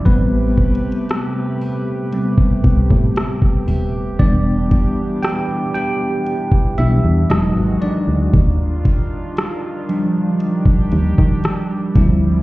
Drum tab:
HH |x-----x-x-x-x-----o-----x-----x-----x-----o-----|x-----x-----x-----x-----x-----x-----x-----x-----|x-----x-----x-----x-----x-----x-----x-----x-----|
SD |------------r-----------------------r-----------|------------r-----------------------r-----------|------------r-----------------------r-----------|
BD |o-----o--------------------o--o--o-----o--------|o-----o--------------------o--------------------|o-----o--------------------o-----o--------o-----|